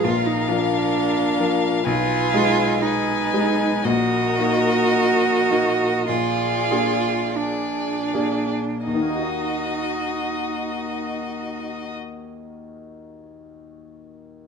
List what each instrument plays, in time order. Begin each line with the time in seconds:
0.04 grand piano A#1, cello F4, violin A#4 F5
0.26 cello D#4
0.48 grand piano F3 F4 A#4, cello D4
1.39 grand piano F3 F4 A#4
1.84 grand piano B1, cello F4, violin B4 G#5
2.34 grand piano G#3 D#4 G#4
2.81 cello D#4, violin B4 G#5
3.33 grand piano G#3 D#4 G#4
3.84 grand piano A#1, cello F#4, violin A#4 D#5
4.39 grand piano A#3 D#4 F#4
5.50 grand piano A#3 D#4 F#4
6.08 grand piano A#1, cello F4, violin G#4 D5
6.71 grand piano A#3 D4 G#4
7.36 cello D4, violin G#4 D5
8.14 grand piano A#3 D4 G#4
8.86 grand piano D#2, cello D#4, violin F#4 D#5
8.95 grand piano D#3
9.01 grand piano A#3
9.09 grand piano D#4
9.16 grand piano F#4
9.23 grand piano D#5